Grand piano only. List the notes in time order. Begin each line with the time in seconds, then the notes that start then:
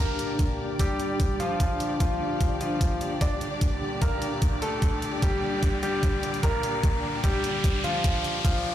0.00 A#3 A#4
0.79 G3 G4
1.40 F3 F4
2.00 F3 F4
2.61 F3 F4
3.21 D4 D5
4.02 A#3 A#4
4.62 A3 A4
5.22 G3 G4
5.83 G3 G4
6.43 A#3 A#4
7.24 G3 G4
7.84 F3 F4
8.44 F3 F4